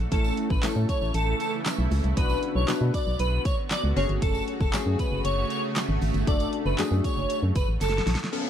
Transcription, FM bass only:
0.12 0.31 A1 loud
0.50 0.60 A1 loud
0.63 0.68 A2 soft
0.76 0.86 A2 loud
1.02 1.12 A1 medium
1.15 1.34 A1 loud
1.79 1.88 B1 medium
1.91 2.01 C#2 loud
2.04 2.14 C2 medium
2.17 2.37 B1 loud
2.55 2.65 B1 loud
2.68 2.73 B2 medium
2.81 2.91 B2 loud
3.07 3.17 B1 loud
3.20 3.39 B1 loud
3.84 3.94 C#2 medium
3.97 4.06 F#1 loud
4.09 4.19 G1 medium
4.22 4.42 F#1 loud
4.60 4.70 F#1 loud
4.74 4.79 F#2 medium
4.86 4.96 F#2 loud
5.12 5.22 F#1 medium
5.25 5.44 F#1 medium
5.89 5.99 G#1 loud
6.02 6.12 G#1 loud
6.14 6.24 G1 loud
6.27 6.47 F#1 loud
6.66 6.76 F#1 loud
6.78 6.83 F#2 medium
6.91 7.01 F#2 loud
7.17 7.27 F#1 loud
7.43 7.53 F#2 medium
7.56 7.65 F#1 loud
7.68 7.78 A1 medium
7.81 8.01 F#1 loud
8.07 8.17 A#1 loud

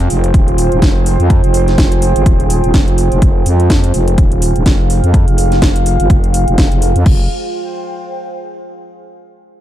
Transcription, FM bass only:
0.10 0.32 F1 loud
0.34 0.70 D#1 loud
0.72 0.80 D#1 medium
0.82 1.18 F1 medium
1.20 1.42 F2 medium
1.44 1.76 F1 loud
1.78 2.14 F1 loud
2.16 2.24 G1 loud
2.26 2.62 D#1 loud
2.64 2.72 D#1 loud
2.74 3.10 F1 medium
3.12 3.20 F1 loud
3.22 3.44 F1 loud
3.46 3.92 F2 medium
3.94 4.16 F1 loud
4.18 4.54 D#1 medium
4.56 4.64 D#1 loud
4.66 5.02 F1 medium
5.04 5.26 F2 medium
5.28 5.60 F1 medium
5.62 5.98 F1 loud
6.00 6.08 G1 loud
6.10 6.46 F1 loud
6.48 6.56 F1 medium
6.58 6.70 F1 loud
6.72 6.94 F1 medium
6.96 7.04 F2 medium
7.06 7.28 F1 loud

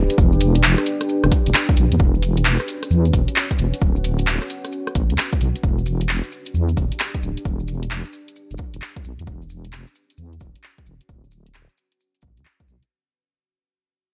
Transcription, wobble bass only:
0.18 0.76 E1 loud
1.24 1.31 E1 loud
1.46 1.54 E1 medium
1.77 1.90 B1 medium
1.92 1.99 E2 medium
2.00 2.58 E1 loud
2.91 3.12 E2 medium
3.13 3.27 E1 medium
3.59 3.72 E1 medium
3.82 4.39 D1 loud
4.95 5.11 A1 medium
5.10 5.17 D2 medium
5.41 5.54 B1 medium
5.63 6.21 E1 loud
6.54 6.75 E2 medium
6.77 6.90 E1 medium
7.23 7.36 D1 medium
7.45 8.03 E1 loud
8.51 8.58 E1 loud
8.74 8.81 E1 medium
9.05 9.18 B1 medium
9.19 9.26 E2 medium
9.27 9.85 E1 loud
10.18 10.39 E2 medium
10.41 10.54 E1 medium
10.86 10.99 E1 medium
11.09 11.67 D1 medium
12.23 12.39 A1 medium
12.37 12.45 D2 medium
12.68 12.81 B1 medium

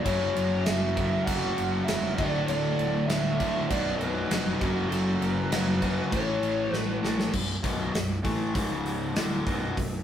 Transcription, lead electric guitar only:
0.03 0.67 C#5 loud
0.64 1.24 E5 loud
1.24 1.84 F#5 medium
1.84 2.17 E5 loud
2.14 2.45 D5 loud
2.46 3.09 D5 loud
3.06 3.70 E5 medium
3.69 3.98 D5 medium
3.98 4.61 B4 medium
4.60 4.88 F#4 medium
4.89 5.21 A4 loud
5.21 6.11 B4 loud
6.12 6.74 C#5 medium
6.74 6.99 B4 medium

